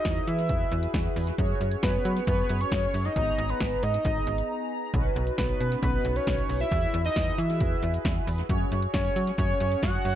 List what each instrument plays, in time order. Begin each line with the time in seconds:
Already playing: analog polysynth E4 F#4 G#4 B4, analog synth lead D#5
0.05 fm bass E2, kick, snare, closed hi-hat
0.27 fm bass E3, analog synth lead E5, closed hi-hat
0.39 closed hi-hat
0.49 fm bass E2, kick, closed hi-hat
0.72 fm bass E2, closed hi-hat
0.83 closed hi-hat
0.94 fm bass E2, kick, snare, closed hi-hat
1.16 fm bass E2, open hi-hat
1.27 closed hi-hat
1.38 fm bass F#2, analog polysynth C#4 F#4 G#4 C#5, kick, closed hi-hat
1.61 fm bass F#2, closed hi-hat
1.72 closed hi-hat
1.83 fm bass F#2, analog synth lead B4, kick, snare, closed hi-hat
2.05 fm bass F#3, closed hi-hat
2.17 closed hi-hat
2.27 fm bass F#2, analog synth lead B4, kick, closed hi-hat
2.49 fm bass F#2, closed hi-hat
2.61 analog synth lead C#5, closed hi-hat
2.72 fm bass F#2, kick, snare, closed hi-hat
2.94 fm bass F#2, open hi-hat
3.05 analog synth lead D#5, closed hi-hat
3.16 fm bass G#1, analog polysynth B3 D#4 G#4 A#5, kick, closed hi-hat
3.38 fm bass G#1, closed hi-hat
3.49 analog synth lead B4, closed hi-hat
3.60 fm bass G#1, kick, snare, closed hi-hat
3.83 fm bass G#2, analog synth lead D#5, closed hi-hat
3.94 closed hi-hat
4.05 fm bass G#1, kick, closed hi-hat
4.27 fm bass G#1, closed hi-hat
4.38 closed hi-hat
4.94 fm bass B1, analog polysynth C#4 D#4 F#4 B4, kick, closed hi-hat
5.16 fm bass B1, closed hi-hat
5.27 closed hi-hat
5.38 fm bass B1, analog synth lead B4, kick, snare, closed hi-hat
5.60 fm bass B2, closed hi-hat
5.72 closed hi-hat
5.83 fm bass B1, analog synth lead B4, kick, closed hi-hat
6.05 fm bass B1, closed hi-hat
6.16 analog synth lead C#5, closed hi-hat
6.27 fm bass B1, kick, snare, closed hi-hat
6.49 fm bass B1, open hi-hat
6.60 analog synth lead E5, closed hi-hat
6.71 fm bass E2, analog polysynth E4 F#4 G#4 B4, kick, closed hi-hat
6.94 fm bass E2, closed hi-hat
7.05 analog synth lead D#5, closed hi-hat
7.16 fm bass E2, kick, snare, closed hi-hat
7.38 fm bass E3, analog synth lead E5, closed hi-hat
7.50 closed hi-hat
7.60 fm bass E2, kick, closed hi-hat
7.83 fm bass E2, closed hi-hat
7.94 closed hi-hat
8.05 fm bass E2, kick, snare, closed hi-hat
8.27 fm bass E2, open hi-hat
8.38 closed hi-hat
8.49 fm bass F#2, analog polysynth C#4 F#4 G#4 C#5, kick, closed hi-hat
8.72 fm bass F#2, closed hi-hat
8.82 closed hi-hat
8.94 fm bass F#2, analog synth lead C#5, kick, snare, closed hi-hat
9.16 fm bass F#3, closed hi-hat
9.27 closed hi-hat
9.38 fm bass F#2, analog synth lead C#5, kick, closed hi-hat
9.60 fm bass F#2, closed hi-hat
9.72 closed hi-hat
9.83 fm bass F#2, analog synth lead F#5, kick, snare, closed hi-hat
10.05 fm bass F#2, open hi-hat